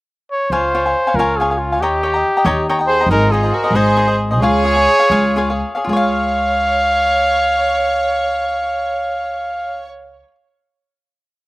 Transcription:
0.31 trumpet C#5
0.50 upright bass C#2, cavaquinho F4 C#5 F5 G#5, trumpet C5
0.75 cavaquinho F4 C#5 F5 G#5
0.86 cavaquinho C#5 F5 G#5
1.07 cavaquinho C#5 F5 G#5
1.14 upright bass C#2, trumpet A#4
1.19 cavaquinho F4 C#5 F5 G#5
1.38 cavaquinho F4 C#5 F5 G#5, trumpet G#4
1.51 cavaquinho C#5 F5 G#5
1.58 trumpet F4
1.72 cavaquinho C#5 F5 G#5
1.80 upright bass D#2, trumpet G4, cavaquinho C#5 D#5 G5 A#5
2.03 cavaquinho C#5 D#5 G5 A#5
2.14 cavaquinho D#5 G5 A#5
2.37 cavaquinho D#5 G5 A#5
2.45 upright bass D#2, cavaquinho C#5 D#5 G5 A#5
2.69 cavaquinho C#5 D#5 G5 A#5
2.79 cavaquinho D#5 G5 A#5
2.86 violin section G#4, trumpet C5
3.01 cavaquinho D#5 G5 A#5
3.06 upright bass G#1, violin section D#4
3.11 cavaquinho D#4 G#4 C5 D#5, trumpet A#4
3.28 cavaquinho D#4, violin section F4, trumpet G#4
3.33 cavaquinho G#4 C5 D#5
3.43 cavaquinho G#4 C5 D#5
3.51 violin section F#4, trumpet A#4
3.64 cavaquinho G#4 C5 D#5
3.70 upright bass G#1, violin section G#4
3.75 cavaquinho D#4 G#4 C5 D#5, trumpet C5
3.97 cavaquinho D#4 G#4 C5 D#5
4.08 cavaquinho G#4 C5 D#5
4.31 cavaquinho G#4 C5 D#5
4.38 upright bass C#2, cavaquinho F4, violin section G#4, trumpet C#5
4.43 cavaquinho G#4 C#5 F5
4.64 cavaquinho F4 G#4 C#5 F5
4.76 cavaquinho G#4 C#5 F5
4.99 cavaquinho G#4 C#5 F5
5.10 upright bass C#2, cavaquinho F4 G#4 C#5 F5
5.36 cavaquinho F4 G#4 C#5 F5
5.50 cavaquinho G#4 C#5 F5
5.75 cavaquinho G#4 C#5 F5
5.84 upright bass C#2, cavaquinho F4, trumpet F5
5.89 cavaquinho G#4 C#5, violin section C#5
5.97 cavaquinho F5

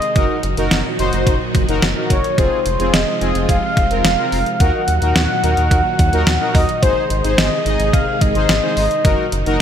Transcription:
Already playing: string machine C3 D#3 G#3 D#4 G#4, soft synth lead D#5
0.02 closed hi-hat
0.16 analog synth bass F#1, string machine A#2 D#3 F#3 F#4, analog polysynth D#4 F#4 A#4, kick, closed hi-hat
0.43 analog synth bass F#1, closed hi-hat
0.57 analog synth bass F#1, analog polysynth D#4 F#4 A#4, closed hi-hat
0.71 analog synth bass F#1, snare, closed hi-hat
0.99 analog synth bass F#1, analog polysynth D#4 F#4 C5, closed hi-hat
1.13 analog synth bass F#1, closed hi-hat
1.27 analog synth bass F#1, kick, closed hi-hat
1.55 analog synth bass F#1, kick, closed hi-hat
1.69 analog synth bass F#1, analog polysynth D#4 F#4 A#4, closed hi-hat
1.82 analog synth bass F#1, snare, closed hi-hat
1.96 analog polysynth D#4 F#4 A#4
2.10 analog synth bass F#1, soft synth lead C#5, kick, closed hi-hat
2.24 closed hi-hat
2.38 analog synth bass F1, string machine C3 F3 G#3 F4, analog polysynth C4 F4 G#4, soft synth lead C5, kick, closed hi-hat
2.66 analog synth bass F1, closed hi-hat
2.80 analog synth bass F1, analog polysynth C4 F4 G#4, closed hi-hat
2.93 analog synth bass F1, soft synth lead D#5, snare, closed hi-hat
3.21 analog synth bass F1, analog polysynth C4 F4 G#4, closed hi-hat
3.35 analog synth bass F1, closed hi-hat
3.49 analog synth bass F1, soft synth lead F5, kick, closed hi-hat
3.77 analog synth bass F1, kick, closed hi-hat
3.91 analog synth bass F1, analog polysynth C4 F4 A#4, closed hi-hat
4.05 analog synth bass F1, soft synth lead F5, snare, closed hi-hat
4.18 analog polysynth C4 F4 A#4
4.32 analog synth bass F1, open hi-hat
4.46 closed hi-hat
4.60 analog synth bass D#2, string machine A#2 D#3 F#3 D#4 F#4, analog polysynth D#4 F#4 A#4, soft synth lead F#5, kick, closed hi-hat
4.88 analog synth bass D#2, closed hi-hat
5.02 analog synth bass D#2, analog polysynth D#4 F#4 A#4, closed hi-hat
5.16 analog synth bass D#2, soft synth lead F#5, snare, closed hi-hat
5.43 analog synth bass D#2, analog polysynth D#4 F#4 A#4, closed hi-hat
5.57 analog synth bass D#2, closed hi-hat
5.71 analog synth bass D#2, kick, closed hi-hat
5.99 analog synth bass D#2, kick, closed hi-hat
6.13 analog synth bass D#2, analog polysynth D#4 F#4 A#4, closed hi-hat
6.27 analog synth bass D#2, snare, closed hi-hat
6.41 analog polysynth D#4 F#4 A#4
6.55 analog synth bass D#2, soft synth lead D#5, kick, open hi-hat
6.69 closed hi-hat
6.82 analog synth bass G#1, string machine C3 G#3 G#4, analog polysynth D#4 G#4 C5, soft synth lead C5, kick, closed hi-hat
7.10 analog synth bass G#1, closed hi-hat
7.24 analog synth bass G#1, analog polysynth D#4 G#4 C5, closed hi-hat
7.38 analog synth bass G#1, soft synth lead D#5, snare, closed hi-hat
7.66 analog synth bass G#1, analog polysynth D#4 G#4 D#5, closed hi-hat
7.80 analog synth bass G#1, closed hi-hat
7.93 analog synth bass G#1, soft synth lead F5, kick, closed hi-hat
8.21 analog synth bass G#1, soft synth lead D#5, kick, closed hi-hat
8.35 analog synth bass G#1, analog polysynth D#4 G#4 C5, closed hi-hat
8.49 analog synth bass G#1, snare, closed hi-hat
8.63 analog polysynth D#4 G#4 C5
8.77 analog synth bass G#1, soft synth lead D#5, open hi-hat
8.91 closed hi-hat
9.05 analog synth bass F#1, string machine A#2 F#3 F#4, analog polysynth D#4 F#4 A#4, kick, closed hi-hat
9.32 analog synth bass F#1, closed hi-hat
9.46 analog synth bass F#1, analog polysynth D#4 F#4 A#4, closed hi-hat

